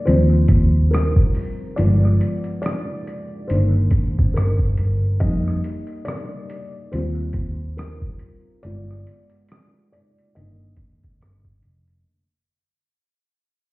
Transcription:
0.05 0.47 D#2 medium
0.05 1.74 F3 medium
0.05 1.75 G3 soft
0.05 1.75 C4 medium
0.05 0.88 C5 medium
0.05 closed hi-hat medium
0.48 1.13 D#2 medium
0.48 kick medium
0.48 closed hi-hat medium
0.91 1.73 A#4 medium
0.91 cross-stick loud
0.91 closed hi-hat medium
1.16 kick medium
1.34 open hi-hat soft
1.76 2.18 G1 loud
1.76 3.46 F3 medium
1.76 3.46 G#3 soft
1.76 3.46 B3 medium
1.76 2.60 D5 loud
1.76 closed hi-hat medium
2.05 cross-stick soft
2.21 closed hi-hat medium
2.44 closed hi-hat soft
2.62 3.51 D5 loud
2.62 closed hi-hat medium
2.66 cross-stick loud
3.07 closed hi-hat medium
3.48 3.90 G1 medium
3.48 5.17 D#3 medium
3.48 5.17 A#3 soft
3.48 5.18 D4 medium
3.48 4.37 C5 medium
3.48 closed hi-hat medium
3.91 4.32 G#1 medium
3.91 kick medium
3.91 closed hi-hat medium
4.19 kick medium
4.34 4.76 G1 medium
4.34 5.23 A#4 medium
4.34 cross-stick loud
4.34 closed hi-hat medium
4.59 kick medium
4.77 5.18 G1 medium
4.77 closed hi-hat medium
5.20 5.61 F2 loud
5.20 5.81 G3 medium
5.20 5.81 A#3 soft
5.20 5.82 D#4 medium
5.20 6.09 D#5 loud
5.20 kick loud
5.20 closed hi-hat medium
5.48 cross-stick soft
5.64 closed hi-hat medium
5.87 closed hi-hat soft
6.05 6.87 D5 medium
6.05 cross-stick loud
6.05 closed hi-hat medium
6.50 closed hi-hat medium
6.92 7.33 D#2 medium
6.92 7.53 G3 soft
6.92 7.53 C4 medium
6.92 7.53 F4 medium
6.92 7.74 C5 medium
6.92 closed hi-hat medium
7.33 7.99 D#2 medium
7.33 kick medium
7.33 closed hi-hat medium
7.77 8.59 A#4 medium
7.77 cross-stick loud
7.77 closed hi-hat medium
8.02 kick medium
8.19 closed hi-hat medium
8.63 9.04 G1 medium
8.63 10.31 G#3 medium
8.63 10.32 B3 soft
8.63 10.32 F4 medium
8.63 9.91 D5 medium
8.63 closed hi-hat medium
8.91 cross-stick soft
9.07 closed hi-hat medium
9.29 closed hi-hat soft
9.48 cross-stick loud
9.48 closed hi-hat medium
9.92 10.36 D5 medium
9.92 closed hi-hat medium
10.18 closed hi-hat soft
10.35 10.76 G1 medium
10.35 11.61 D3 medium
10.35 11.60 D#3 medium
10.35 11.61 A#3 soft
10.35 11.17 D#5 medium
10.35 closed hi-hat medium
10.76 11.18 G#1 medium
10.76 kick medium
10.76 closed hi-hat medium
11.03 kick medium
11.03 closed hi-hat soft
11.22 11.61 G1 medium
11.22 cross-stick loud
11.22 closed hi-hat medium
11.45 kick medium
11.62 12.04 F1 medium
11.62 closed hi-hat medium
11.88 closed hi-hat soft

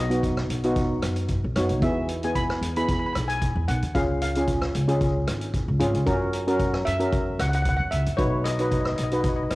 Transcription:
0.00 0.46 B1 medium
0.00 0.99 D#5 medium
0.10 0.42 B3 medium
0.10 0.42 D#4 medium
0.10 0.42 F#4 medium
0.10 closed hi-hat medium
0.23 kick medium
0.23 closed hi-hat medium
0.37 cross-stick medium
0.50 0.99 B1 medium
0.50 closed hi-hat medium
0.64 1.19 B3 medium
0.64 1.19 D#4 medium
0.64 1.19 F#4 medium
0.64 closed hi-hat medium
0.76 kick medium
0.76 closed hi-hat medium
1.02 1.40 F#2 medium
1.02 cross-stick medium
1.02 closed hi-hat medium
1.16 closed hi-hat medium
1.28 kick medium
1.28 closed hi-hat medium
1.44 1.55 B1 medium
1.56 1.69 F#2 medium
1.56 1.73 B3 medium
1.56 1.73 D#4 medium
1.56 1.73 F#4 medium
1.56 1.83 C#5 medium
1.56 cross-stick medium
1.56 closed hi-hat medium
1.69 1.82 B1 medium
1.69 closed hi-hat medium
1.82 2.58 E2 medium
1.82 2.06 B3 medium
1.82 2.07 E4 medium
1.82 2.07 G#4 medium
1.82 2.24 E5 medium
1.82 kick loud
1.82 closed hi-hat medium
2.09 closed hi-hat medium
2.23 2.55 B3 medium
2.23 2.55 E4 medium
2.23 2.55 G#4 medium
2.23 2.36 G#5 medium
2.23 closed hi-hat medium
2.35 2.76 B5 medium
2.35 kick medium
2.35 closed hi-hat medium
2.50 cross-stick medium
2.61 3.11 E2 medium
2.61 closed hi-hat medium
2.76 3.39 B3 medium
2.76 3.40 E4 medium
2.76 3.39 G#4 medium
2.76 2.83 B5 medium
2.76 closed hi-hat medium
2.84 2.90 B5 medium
2.88 2.98 B5 medium
2.88 kick loud
2.88 closed hi-hat medium
2.99 3.05 B5 medium
3.06 3.12 B5 medium
3.13 3.53 B1 medium
3.13 3.21 B5 medium
3.13 cross-stick medium
3.13 closed hi-hat medium
3.28 3.68 G#5 medium
3.28 closed hi-hat medium
3.42 kick medium
3.42 closed hi-hat medium
3.55 3.67 E2 medium
3.68 3.81 B1 medium
3.68 3.92 F#5 medium
3.68 closed hi-hat medium
3.82 3.95 D#2 medium
3.82 closed hi-hat medium
3.95 4.70 C#2 medium
3.95 4.18 C#4 medium
3.95 4.19 F4 medium
3.95 4.19 G#4 medium
3.95 4.07 F5 medium
3.95 kick medium
3.95 closed hi-hat medium
4.21 4.71 F5 medium
4.21 closed hi-hat medium
4.35 4.67 C#4 medium
4.35 4.67 F4 medium
4.35 4.67 G#4 medium
4.35 closed hi-hat medium
4.47 kick medium
4.47 closed hi-hat medium
4.62 cross-stick medium
4.75 5.24 C#2 medium
4.75 closed hi-hat medium
4.88 5.43 C#4 medium
4.88 5.43 F4 medium
4.88 5.44 G#4 medium
4.88 closed hi-hat medium
5.01 kick medium
5.01 closed hi-hat medium
5.27 5.65 G#1 medium
5.27 cross-stick medium
5.27 closed hi-hat medium
5.41 closed hi-hat medium
5.54 kick medium
5.54 closed hi-hat medium
5.68 5.79 C#2 medium
5.79 5.93 G#1 medium
5.79 5.96 C#4 medium
5.79 5.96 F4 medium
5.79 5.96 G#4 medium
5.79 closed hi-hat medium
5.94 6.09 C#2 medium
5.94 closed hi-hat medium
6.06 6.82 F#2 medium
6.06 6.30 C#4 medium
6.06 6.30 F#4 medium
6.06 6.30 A#4 medium
6.06 kick loud
6.06 closed hi-hat medium
6.33 closed hi-hat medium
6.48 6.79 C#4 medium
6.48 6.79 F#4 medium
6.48 6.79 A#4 medium
6.48 closed hi-hat medium
6.60 kick medium
6.60 closed hi-hat soft
6.74 cross-stick medium
6.85 7.36 F#2 medium
6.85 7.40 E5 medium
6.85 closed hi-hat medium
7.00 7.63 C#4 medium
7.00 7.63 F#4 medium
7.00 7.63 A#4 medium
7.00 closed hi-hat medium
7.13 kick loud
7.13 closed hi-hat medium
7.39 7.77 C#2 medium
7.39 7.48 F#5 medium
7.39 cross-stick medium
7.39 closed hi-hat medium
7.49 7.54 F#5 medium
7.49 closed hi-hat medium
7.55 7.61 F#5 medium
7.63 7.68 F#5 medium
7.63 kick medium
7.63 closed hi-hat medium
7.69 7.76 F#5 medium
7.77 7.91 F#2 medium
7.77 7.85 F#5 medium
7.91 8.06 C#2 medium
7.91 8.19 E5 medium
7.91 closed hi-hat medium
8.06 8.20 F#2 medium
8.06 closed hi-hat medium
8.17 8.94 B1 medium
8.17 8.42 D#4 medium
8.17 8.43 F#4 medium
8.17 8.43 B4 medium
8.17 8.45 C#5 medium
8.17 kick loud
8.17 closed hi-hat medium
8.44 8.50 D#5 medium
8.44 cross-stick medium
8.44 closed hi-hat medium
8.51 8.58 D#5 medium
8.59 8.91 D#4 medium
8.59 8.91 F#4 medium
8.59 8.91 B4 medium
8.59 8.64 D#5 medium
8.59 closed hi-hat medium
8.65 8.72 D#5 medium
8.71 8.80 D#5 medium
8.71 kick medium
8.71 closed hi-hat medium
8.81 8.88 D#5 soft
8.85 8.95 D#5 medium
8.85 cross-stick medium
8.96 9.48 B1 medium
8.96 9.02 D#5 soft
8.96 closed hi-hat medium
9.03 9.12 D#5 medium
9.11 9.55 D#4 medium
9.11 9.55 F#4 medium
9.11 9.55 B4 medium
9.11 9.20 D#5 soft
9.11 closed hi-hat medium
9.21 9.28 D#5 soft
9.21 kick loud
9.21 closed hi-hat medium
9.29 9.35 D#5 soft
9.36 9.42 D#5 medium
9.43 9.49 D#5 soft
9.50 9.55 B1 medium
9.50 9.55 D#5 medium
9.50 cross-stick medium
9.50 closed hi-hat medium

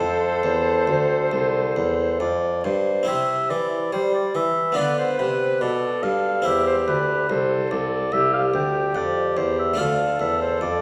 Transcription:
0.00 0.40 F2 medium
0.00 0.43 F2 medium
0.00 3.02 C4 soft
0.00 3.03 E4 soft
0.00 2.20 A4 loud
0.00 3.04 A4 soft
0.00 2.19 C5 medium
0.43 0.84 E2 medium
0.43 0.87 E2 medium
0.87 1.28 D2 medium
0.87 1.31 D2 medium
1.31 1.72 C2 medium
1.31 1.75 C2 medium
1.76 2.19 E2 medium
1.76 2.16 E2 medium
2.20 2.63 F2 medium
2.20 2.61 F2 medium
2.20 2.66 D5 medium
2.64 3.04 G2 medium
2.64 3.07 G2 medium
2.64 3.09 C5 medium
3.03 4.71 C4 soft
3.03 4.72 E4 soft
3.03 4.72 G4 soft
3.08 3.53 C3 medium
3.08 3.47 C3 soft
3.08 3.51 E5 medium
3.50 3.89 E3 soft
3.50 3.93 E3 medium
3.50 3.95 D5 medium
3.93 4.31 G3 soft
3.93 4.34 G3 medium
3.93 4.14 C5 medium
4.14 4.37 D5 medium
4.35 4.73 E3 soft
4.35 4.78 E3 medium
4.35 4.77 E5 medium
4.72 6.39 B3 soft
4.72 6.40 D4 soft
4.72 6.41 F4 soft
4.72 4.98 D5 medium
4.77 5.15 D3 soft
4.77 5.06 D3 medium
4.77 5.63 B4 medium
4.98 5.20 C5 medium
5.18 5.62 C3 medium
5.18 5.58 C3 soft
5.18 5.60 B4 medium
5.61 6.04 B2 medium
5.61 6.00 B2 soft
5.61 6.45 A4 medium
5.61 6.04 D5 medium
6.03 6.45 G2 soft
6.03 6.42 G2 soft
6.03 6.47 F5 medium
6.42 6.84 E2 soft
6.42 6.87 E2 medium
6.42 9.73 C4 soft
6.42 9.74 E4 soft
6.42 7.28 G4 medium
6.42 6.66 E5 medium
6.67 6.76 C5 medium
6.87 7.28 D2 medium
6.87 7.26 D2 soft
6.87 7.32 B4 medium
7.29 7.70 C2 medium
7.29 7.67 C2 soft
7.29 8.11 A4 medium
7.29 7.73 C5 medium
7.71 8.12 C2 medium
7.71 8.09 C2 soft
7.71 8.14 D5 medium
8.12 8.50 C2 soft
8.12 8.53 C2 medium
8.12 9.75 G4 medium
8.12 8.33 E5 medium
8.34 8.43 F5 medium
8.54 8.92 D2 soft
8.54 8.95 D2 medium
8.54 8.98 G5 medium
8.95 9.33 F2 soft
8.95 9.36 F2 medium
8.95 9.39 D5 medium
9.37 9.74 E2 soft
9.37 9.78 E2 medium
9.37 9.58 C5 medium
9.59 9.80 E5 medium
9.74 10.16 A3 soft
9.74 10.82 D4 soft
9.74 10.82 F4 soft
9.78 10.16 D2 soft
9.78 10.19 D2 medium
9.78 10.82 A4 medium
9.78 10.20 F5 medium
10.20 10.57 E2 soft
10.20 10.61 E2 medium
10.20 10.40 E5 medium
10.41 10.61 C5 medium
10.61 10.82 F2 soft
10.61 10.82 F2 medium
10.61 10.82 D5 medium

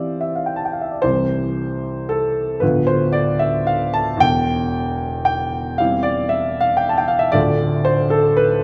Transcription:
0.00 1.03 E3 soft
0.00 1.06 C4 soft
0.00 1.04 G4 soft
0.00 1.02 C5 medium
0.00 0.21 D5 soft
0.00 0.21 E5 soft
0.00 0.35 F5 medium
0.21 0.37 E5 medium
0.35 0.48 F5 soft
0.46 0.57 G5 soft
0.56 0.65 A5 soft
0.65 0.74 G5 soft
0.73 0.82 F5 soft
0.81 0.92 E5 soft
0.91 1.03 D5 soft
1.02 2.58 C2 soft
1.02 2.58 C3 medium
1.02 2.57 E3 soft
1.02 2.58 G3 soft
1.02 2.58 G4 soft
1.02 2.09 C5 medium
2.09 2.61 A4 medium
2.60 4.17 D1 soft
2.60 4.17 D2 soft
2.60 4.17 F3 soft
2.60 4.17 B3 soft
2.60 4.17 F4 soft
2.60 2.87 B4 medium
2.87 3.14 C5 medium
3.13 3.40 D5 medium
3.39 3.67 E5 medium
3.67 3.94 F5 medium
3.94 4.20 A5 medium
4.17 7.29 E2 medium
4.17 5.24 G5 medium
4.22 7.31 E1 soft
5.25 5.78 G5 medium
5.78 7.31 G3 soft
5.78 7.31 C4 soft
5.78 7.32 E4 soft
5.78 6.05 F5 medium
6.03 6.30 D5 medium
6.29 6.61 E5 medium
6.61 6.78 F5 medium
6.77 6.90 G5 medium
6.89 6.99 A5 medium
6.98 7.09 G5 medium
7.08 7.21 F5 medium
7.19 7.34 E5 medium
7.32 8.64 D1 medium
7.32 8.64 D2 medium
7.32 8.64 A3 soft
7.32 8.64 D4 soft
7.32 8.64 F4 soft
7.32 7.86 D5 medium
7.85 8.12 C5 medium
8.10 8.37 A4 medium
8.37 8.64 B4 medium

